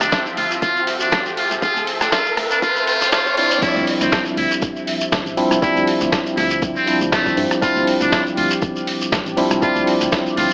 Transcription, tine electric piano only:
0, 0, Header, 1, 2, 480
1, 0, Start_track
1, 0, Key_signature, -1, "minor"
1, 0, Tempo, 500000
1, 1558, Time_signature, 4, 2, 24, 8
1, 10113, End_track
2, 0, Start_track
2, 0, Title_t, "Tine electric piano"
2, 0, Program_c, 0, 4
2, 0, Note_on_c, 0, 53, 86
2, 0, Note_on_c, 0, 55, 80
2, 0, Note_on_c, 0, 60, 78
2, 0, Note_on_c, 0, 62, 78
2, 0, Note_on_c, 0, 64, 93
2, 3190, Note_off_c, 0, 53, 0
2, 3192, Note_off_c, 0, 55, 0
2, 3194, Note_off_c, 0, 60, 0
2, 3196, Note_off_c, 0, 62, 0
2, 3199, Note_off_c, 0, 64, 0
2, 3234, Note_on_c, 0, 53, 83
2, 3236, Note_on_c, 0, 55, 75
2, 3238, Note_on_c, 0, 60, 75
2, 3240, Note_on_c, 0, 62, 75
2, 3242, Note_on_c, 0, 64, 89
2, 3433, Note_off_c, 0, 53, 0
2, 3434, Note_off_c, 0, 55, 0
2, 3435, Note_off_c, 0, 60, 0
2, 3436, Note_off_c, 0, 62, 0
2, 3437, Note_off_c, 0, 64, 0
2, 3470, Note_on_c, 0, 53, 88
2, 3474, Note_on_c, 0, 55, 76
2, 3478, Note_on_c, 0, 60, 78
2, 3482, Note_on_c, 0, 62, 78
2, 3487, Note_on_c, 0, 64, 96
2, 5128, Note_off_c, 0, 53, 0
2, 5130, Note_off_c, 0, 55, 0
2, 5132, Note_off_c, 0, 60, 0
2, 5134, Note_off_c, 0, 62, 0
2, 5137, Note_off_c, 0, 64, 0
2, 5153, Note_on_c, 0, 53, 97
2, 5155, Note_on_c, 0, 55, 88
2, 5158, Note_on_c, 0, 60, 91
2, 5160, Note_on_c, 0, 62, 91
2, 5162, Note_on_c, 0, 64, 106
2, 5370, Note_off_c, 0, 53, 0
2, 5371, Note_off_c, 0, 55, 0
2, 5372, Note_off_c, 0, 60, 0
2, 5373, Note_off_c, 0, 62, 0
2, 5374, Note_off_c, 0, 64, 0
2, 5389, Note_on_c, 0, 53, 94
2, 5394, Note_on_c, 0, 55, 86
2, 5398, Note_on_c, 0, 60, 88
2, 5403, Note_on_c, 0, 62, 88
2, 5407, Note_on_c, 0, 64, 110
2, 6568, Note_off_c, 0, 53, 0
2, 6570, Note_off_c, 0, 55, 0
2, 6572, Note_off_c, 0, 60, 0
2, 6575, Note_off_c, 0, 62, 0
2, 6577, Note_off_c, 0, 64, 0
2, 6589, Note_on_c, 0, 53, 81
2, 6594, Note_on_c, 0, 55, 74
2, 6598, Note_on_c, 0, 60, 78
2, 6602, Note_on_c, 0, 62, 76
2, 6607, Note_on_c, 0, 64, 92
2, 7288, Note_off_c, 0, 53, 0
2, 7290, Note_off_c, 0, 55, 0
2, 7292, Note_off_c, 0, 60, 0
2, 7294, Note_off_c, 0, 62, 0
2, 7297, Note_off_c, 0, 64, 0
2, 7309, Note_on_c, 0, 53, 86
2, 7314, Note_on_c, 0, 55, 81
2, 7318, Note_on_c, 0, 60, 81
2, 7322, Note_on_c, 0, 62, 81
2, 7327, Note_on_c, 0, 64, 97
2, 8968, Note_off_c, 0, 53, 0
2, 8970, Note_off_c, 0, 55, 0
2, 8972, Note_off_c, 0, 60, 0
2, 8974, Note_off_c, 0, 62, 0
2, 8977, Note_off_c, 0, 64, 0
2, 8994, Note_on_c, 0, 53, 95
2, 8997, Note_on_c, 0, 55, 91
2, 8999, Note_on_c, 0, 60, 87
2, 9001, Note_on_c, 0, 62, 89
2, 9003, Note_on_c, 0, 64, 107
2, 9210, Note_off_c, 0, 53, 0
2, 9212, Note_off_c, 0, 55, 0
2, 9213, Note_off_c, 0, 60, 0
2, 9214, Note_off_c, 0, 62, 0
2, 9215, Note_off_c, 0, 64, 0
2, 9230, Note_on_c, 0, 53, 92
2, 9234, Note_on_c, 0, 55, 88
2, 9238, Note_on_c, 0, 60, 89
2, 9243, Note_on_c, 0, 62, 90
2, 9247, Note_on_c, 0, 64, 102
2, 10113, Note_off_c, 0, 53, 0
2, 10113, Note_off_c, 0, 55, 0
2, 10113, Note_off_c, 0, 60, 0
2, 10113, Note_off_c, 0, 62, 0
2, 10113, Note_off_c, 0, 64, 0
2, 10113, End_track
0, 0, End_of_file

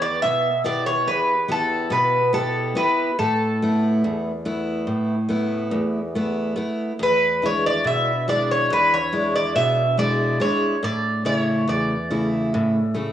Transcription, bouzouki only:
0, 0, Header, 1, 2, 480
1, 0, Start_track
1, 0, Tempo, 848656
1, 1808, Time_signature, 9, 3, 24, 8
1, 7424, End_track
2, 0, Start_track
2, 0, Title_t, "Bouzouki"
2, 0, Program_c, 0, 25
2, 9, Note_on_c, 0, 74, 88
2, 120, Note_off_c, 0, 74, 0
2, 125, Note_on_c, 0, 76, 85
2, 349, Note_off_c, 0, 76, 0
2, 372, Note_on_c, 0, 74, 78
2, 486, Note_off_c, 0, 74, 0
2, 488, Note_on_c, 0, 73, 82
2, 609, Note_on_c, 0, 71, 83
2, 612, Note_off_c, 0, 73, 0
2, 832, Note_off_c, 0, 71, 0
2, 858, Note_on_c, 0, 69, 87
2, 1076, Note_off_c, 0, 69, 0
2, 1085, Note_on_c, 0, 71, 76
2, 1310, Note_off_c, 0, 71, 0
2, 1323, Note_on_c, 0, 69, 79
2, 1563, Note_off_c, 0, 69, 0
2, 1565, Note_on_c, 0, 71, 73
2, 1790, Note_off_c, 0, 71, 0
2, 1804, Note_on_c, 0, 69, 72
2, 2324, Note_off_c, 0, 69, 0
2, 3975, Note_on_c, 0, 71, 92
2, 4218, Note_on_c, 0, 73, 85
2, 4219, Note_off_c, 0, 71, 0
2, 4333, Note_off_c, 0, 73, 0
2, 4335, Note_on_c, 0, 74, 92
2, 4444, Note_off_c, 0, 74, 0
2, 4453, Note_on_c, 0, 76, 82
2, 4675, Note_off_c, 0, 76, 0
2, 4690, Note_on_c, 0, 74, 87
2, 4812, Note_off_c, 0, 74, 0
2, 4815, Note_on_c, 0, 73, 85
2, 4924, Note_off_c, 0, 73, 0
2, 4936, Note_on_c, 0, 71, 88
2, 5044, Note_off_c, 0, 71, 0
2, 5055, Note_on_c, 0, 73, 84
2, 5289, Note_off_c, 0, 73, 0
2, 5291, Note_on_c, 0, 74, 87
2, 5403, Note_off_c, 0, 74, 0
2, 5406, Note_on_c, 0, 76, 93
2, 5648, Note_off_c, 0, 76, 0
2, 5650, Note_on_c, 0, 74, 88
2, 5873, Note_off_c, 0, 74, 0
2, 5890, Note_on_c, 0, 73, 77
2, 6113, Note_off_c, 0, 73, 0
2, 6132, Note_on_c, 0, 74, 85
2, 6365, Note_off_c, 0, 74, 0
2, 6368, Note_on_c, 0, 74, 75
2, 6430, Note_off_c, 0, 74, 0
2, 6430, Note_on_c, 0, 73, 75
2, 6611, Note_off_c, 0, 73, 0
2, 6613, Note_on_c, 0, 74, 73
2, 7424, Note_off_c, 0, 74, 0
2, 7424, End_track
0, 0, End_of_file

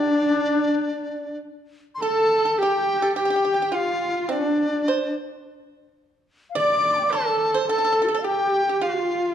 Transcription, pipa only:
0, 0, Header, 1, 2, 480
1, 0, Start_track
1, 0, Tempo, 579151
1, 1668, Time_signature, 4, 2, 24, 8
1, 3098, Tempo, 566038
1, 7852, End_track
2, 0, Start_track
2, 0, Title_t, "Pipa"
2, 0, Program_c, 0, 105
2, 0, Note_on_c, 0, 62, 73
2, 1151, Note_off_c, 0, 62, 0
2, 1677, Note_on_c, 0, 69, 76
2, 2007, Note_off_c, 0, 69, 0
2, 2032, Note_on_c, 0, 69, 65
2, 2142, Note_off_c, 0, 69, 0
2, 2176, Note_on_c, 0, 67, 76
2, 2496, Note_off_c, 0, 67, 0
2, 2505, Note_on_c, 0, 69, 76
2, 2616, Note_off_c, 0, 69, 0
2, 2620, Note_on_c, 0, 67, 72
2, 2680, Note_off_c, 0, 67, 0
2, 2696, Note_on_c, 0, 67, 53
2, 2728, Note_off_c, 0, 67, 0
2, 2738, Note_on_c, 0, 67, 61
2, 2774, Note_off_c, 0, 67, 0
2, 2784, Note_on_c, 0, 67, 56
2, 2847, Note_off_c, 0, 67, 0
2, 2857, Note_on_c, 0, 67, 58
2, 2922, Note_off_c, 0, 67, 0
2, 2934, Note_on_c, 0, 67, 53
2, 2992, Note_off_c, 0, 67, 0
2, 3001, Note_on_c, 0, 67, 58
2, 3057, Note_off_c, 0, 67, 0
2, 3081, Note_on_c, 0, 65, 68
2, 3537, Note_off_c, 0, 65, 0
2, 3564, Note_on_c, 0, 62, 80
2, 4018, Note_off_c, 0, 62, 0
2, 4067, Note_on_c, 0, 72, 80
2, 4287, Note_off_c, 0, 72, 0
2, 5485, Note_on_c, 0, 74, 97
2, 5929, Note_off_c, 0, 74, 0
2, 5970, Note_on_c, 0, 69, 79
2, 6302, Note_off_c, 0, 69, 0
2, 6325, Note_on_c, 0, 72, 78
2, 6437, Note_off_c, 0, 72, 0
2, 6452, Note_on_c, 0, 69, 82
2, 6508, Note_off_c, 0, 69, 0
2, 6527, Note_on_c, 0, 69, 56
2, 6570, Note_off_c, 0, 69, 0
2, 6580, Note_on_c, 0, 69, 65
2, 6635, Note_off_c, 0, 69, 0
2, 6647, Note_on_c, 0, 69, 61
2, 6700, Note_off_c, 0, 69, 0
2, 6727, Note_on_c, 0, 69, 68
2, 6772, Note_off_c, 0, 69, 0
2, 6783, Note_on_c, 0, 69, 60
2, 6825, Note_off_c, 0, 69, 0
2, 6835, Note_on_c, 0, 69, 67
2, 6889, Note_off_c, 0, 69, 0
2, 6919, Note_on_c, 0, 67, 65
2, 7260, Note_off_c, 0, 67, 0
2, 7300, Note_on_c, 0, 67, 60
2, 7399, Note_off_c, 0, 67, 0
2, 7402, Note_on_c, 0, 65, 70
2, 7852, Note_off_c, 0, 65, 0
2, 7852, End_track
0, 0, End_of_file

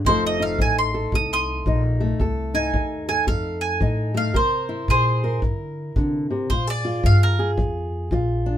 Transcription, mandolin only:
0, 0, Header, 1, 2, 480
1, 0, Start_track
1, 0, Tempo, 537153
1, 41, Time_signature, 4, 2, 24, 8
1, 7665, End_track
2, 0, Start_track
2, 0, Title_t, "Mandolin"
2, 0, Program_c, 0, 25
2, 57, Note_on_c, 0, 72, 95
2, 204, Note_off_c, 0, 72, 0
2, 237, Note_on_c, 0, 75, 85
2, 375, Note_off_c, 0, 75, 0
2, 379, Note_on_c, 0, 77, 80
2, 526, Note_off_c, 0, 77, 0
2, 550, Note_on_c, 0, 80, 73
2, 691, Note_off_c, 0, 80, 0
2, 701, Note_on_c, 0, 84, 74
2, 1002, Note_off_c, 0, 84, 0
2, 1030, Note_on_c, 0, 87, 80
2, 1171, Note_off_c, 0, 87, 0
2, 1188, Note_on_c, 0, 84, 68
2, 1192, Note_on_c, 0, 87, 85
2, 1622, Note_off_c, 0, 84, 0
2, 1643, Note_off_c, 0, 87, 0
2, 2276, Note_on_c, 0, 80, 73
2, 2735, Note_off_c, 0, 80, 0
2, 2758, Note_on_c, 0, 80, 77
2, 2925, Note_off_c, 0, 80, 0
2, 2929, Note_on_c, 0, 77, 78
2, 3217, Note_off_c, 0, 77, 0
2, 3227, Note_on_c, 0, 80, 77
2, 3691, Note_off_c, 0, 80, 0
2, 3728, Note_on_c, 0, 77, 77
2, 3890, Note_off_c, 0, 77, 0
2, 3898, Note_on_c, 0, 72, 81
2, 4356, Note_off_c, 0, 72, 0
2, 4380, Note_on_c, 0, 68, 73
2, 4385, Note_on_c, 0, 72, 76
2, 4819, Note_off_c, 0, 68, 0
2, 4838, Note_off_c, 0, 72, 0
2, 5807, Note_on_c, 0, 72, 84
2, 5960, Note_off_c, 0, 72, 0
2, 5988, Note_on_c, 0, 74, 83
2, 6286, Note_off_c, 0, 74, 0
2, 6308, Note_on_c, 0, 77, 82
2, 6451, Note_off_c, 0, 77, 0
2, 6462, Note_on_c, 0, 70, 85
2, 6705, Note_off_c, 0, 70, 0
2, 7665, End_track
0, 0, End_of_file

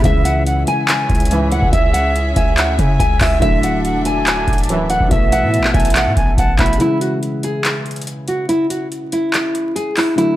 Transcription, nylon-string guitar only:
0, 0, Header, 1, 2, 480
1, 0, Start_track
1, 0, Tempo, 422535
1, 45, Time_signature, 4, 2, 24, 8
1, 11772, End_track
2, 0, Start_track
2, 0, Title_t, "Nylon-string guitar"
2, 0, Program_c, 0, 24
2, 57, Note_on_c, 0, 76, 108
2, 240, Note_off_c, 0, 76, 0
2, 283, Note_on_c, 0, 78, 78
2, 472, Note_off_c, 0, 78, 0
2, 770, Note_on_c, 0, 80, 85
2, 1682, Note_off_c, 0, 80, 0
2, 1728, Note_on_c, 0, 78, 86
2, 1915, Note_off_c, 0, 78, 0
2, 1962, Note_on_c, 0, 76, 113
2, 2151, Note_off_c, 0, 76, 0
2, 2199, Note_on_c, 0, 78, 75
2, 2389, Note_off_c, 0, 78, 0
2, 2686, Note_on_c, 0, 76, 85
2, 3363, Note_off_c, 0, 76, 0
2, 3403, Note_on_c, 0, 80, 86
2, 3592, Note_off_c, 0, 80, 0
2, 3652, Note_on_c, 0, 76, 83
2, 3837, Note_off_c, 0, 76, 0
2, 3883, Note_on_c, 0, 76, 126
2, 4072, Note_off_c, 0, 76, 0
2, 4132, Note_on_c, 0, 78, 83
2, 4318, Note_off_c, 0, 78, 0
2, 4610, Note_on_c, 0, 80, 83
2, 5522, Note_off_c, 0, 80, 0
2, 5568, Note_on_c, 0, 78, 80
2, 5755, Note_off_c, 0, 78, 0
2, 5806, Note_on_c, 0, 76, 96
2, 5994, Note_off_c, 0, 76, 0
2, 6049, Note_on_c, 0, 78, 80
2, 6236, Note_off_c, 0, 78, 0
2, 6520, Note_on_c, 0, 76, 81
2, 7199, Note_off_c, 0, 76, 0
2, 7259, Note_on_c, 0, 78, 80
2, 7442, Note_off_c, 0, 78, 0
2, 7486, Note_on_c, 0, 76, 79
2, 7674, Note_off_c, 0, 76, 0
2, 7737, Note_on_c, 0, 64, 110
2, 7921, Note_off_c, 0, 64, 0
2, 7963, Note_on_c, 0, 66, 76
2, 8152, Note_off_c, 0, 66, 0
2, 8452, Note_on_c, 0, 68, 81
2, 9363, Note_off_c, 0, 68, 0
2, 9409, Note_on_c, 0, 66, 84
2, 9596, Note_off_c, 0, 66, 0
2, 9643, Note_on_c, 0, 64, 108
2, 9832, Note_off_c, 0, 64, 0
2, 9880, Note_on_c, 0, 66, 72
2, 10070, Note_off_c, 0, 66, 0
2, 10367, Note_on_c, 0, 64, 84
2, 11043, Note_off_c, 0, 64, 0
2, 11084, Note_on_c, 0, 68, 84
2, 11272, Note_off_c, 0, 68, 0
2, 11331, Note_on_c, 0, 64, 78
2, 11517, Note_off_c, 0, 64, 0
2, 11562, Note_on_c, 0, 64, 123
2, 11752, Note_off_c, 0, 64, 0
2, 11772, End_track
0, 0, End_of_file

